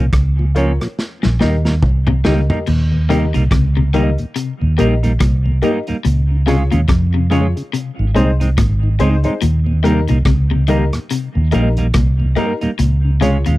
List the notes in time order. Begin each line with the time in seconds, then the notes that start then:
Already playing: C2
0.13 C#2, kick, cross-stick, closed hi-hat
0.39 A#2 F3
0.55 F3 A#3 C#4 F4 A#4 C#5, closed hi-hat
0.80 A#2 F3 A#4 C#5, cross-stick, closed hi-hat
0.99 snare
1.23 A#1 D#2 G2 A#2, snare
1.40 D#2 A#2 G3 A#3 D#4 G4 A#4 D#5, snare
1.65 D#2 A#2 G3 A#3 D#4, snare
1.82 C2, kick, mid tom
2.07 D#2 A#2 C3, mid tom
2.24 C#2 D#3 G3 A#3 D#4 G4 A#4 D#5, snare
2.50 D#2 A#2 G3 A#3 D#4 G4 A#4 D#5, floor tom
2.67 D#2 A#2, crash
2.92 D#2 A#2
3.09 C3 G3 A#3 D#4 G4 A#4 D#5, closed hi-hat
3.34 C2 D#2 A#2 G3 A#3 D#4, closed hi-hat
3.51 C#2 C3, kick, cross-stick, closed hi-hat
3.77 D#2 A#2 C3
3.94 D#3 G3 A#3 D#4 G4 A#4 D#5, closed hi-hat
4.18 D#2 A#2, closed hi-hat
4.36 C3, closed hi-hat
4.61 D#2 A#2
4.78 A#1 A#2 G3 A#3 D#4 G4 A#4 D#5, closed hi-hat
5.03 D#2 A#2 G3 A#3 D#4, closed hi-hat
5.20 C2 A#2, kick, cross-stick, closed hi-hat
5.46 D#2 A#2
5.62 G2 G3 A#3 D#4 G4 A#4 D#5, closed hi-hat
5.87 D#2 A#2 G3 A#3 D#4, closed hi-hat
6.05 C#2 A#2, closed hi-hat
6.31 C#3
6.46 C3 G#3 C#4 F4 G#4 C#5, closed hi-hat
6.71 D#2 A#2 C#3 G#3 C#4 F4, closed hi-hat
6.88 F2 C3, kick, cross-stick, closed hi-hat
7.14 C3 C#3
7.30 C#3 G#3 C#4 F4 G#4 C#5, closed hi-hat
7.56 C#3 G#4 C#5, closed hi-hat
7.73 C3, closed hi-hat
7.99 G#1 G#2 D#3
8.14 C2 A#2 G#3 C4 D#4 G#4 C5, closed hi-hat
8.40 G#2 D#3 G#3 C4 D#4, closed hi-hat
8.58 G#1 A#2, kick, cross-stick, closed hi-hat
8.83 G#2 D#3
8.99 C#2 G#2 G#3 C4 D#4 G#4 C5, closed hi-hat
9.24 G#2 D#3 G#3 C4 D#4 G#4 C5, closed hi-hat
9.41 D#2 A#2, closed hi-hat
9.67 D#2 A#2
9.83 C3 G3 A#3 D#4 G4 A#4, closed hi-hat
10.08 C2 D#2 A#2 G3 A#3 D#4, closed hi-hat
10.25 C#2 C3, kick, cross-stick, closed hi-hat
10.51 D#2 A#2 C3
10.68 D#3 G3 A#3 D#4 G4 A#4, closed hi-hat
10.93 D#2 A#2, cross-stick, closed hi-hat
11.10 C3, closed hi-hat
11.35 D#2 A#2
11.52 A#1 A#2 G3 A#3 D#4 G4 A#4, closed hi-hat
11.77 D#2 A#2 G3 A#3 D#4, closed hi-hat
11.94 C2 A#2, kick, cross-stick, closed hi-hat
12.20 D#2 A#2
12.36 G2 G3 A#3 D#4 G4 A#4, closed hi-hat
12.61 D#2 A#2 G3 A#3 D#4, closed hi-hat
12.79 C#2 A#2, closed hi-hat
13.05 C#3
13.21 C3 G#3 C#4 F4 G#4 C#5, closed hi-hat
13.46 D#2 A#2 C#3 G#3 C#4 F4, closed hi-hat